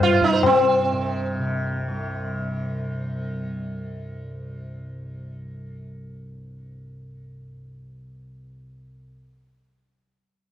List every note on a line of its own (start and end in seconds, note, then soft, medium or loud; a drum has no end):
0.00 1.88 C2 medium
0.00 0.11 G2 medium
0.00 0.92 C3 medium
0.00 0.24 F4 loud
0.00 tabla tin medium
0.00 tabla ge medium
0.12 0.43 G2 medium
0.12 0.32 C5 soft
0.21 0.45 D#4 medium
0.21 tabla tin medium
0.21 tabla ge medium
0.33 0.53 C5 soft
0.43 7.58 G2 medium
0.43 3.64 C4 medium
0.43 tabla na loud
0.43 tabla ge loud
0.92 1.40 C3 medium
1.40 8.55 C3 medium
1.88 9.03 C2 medium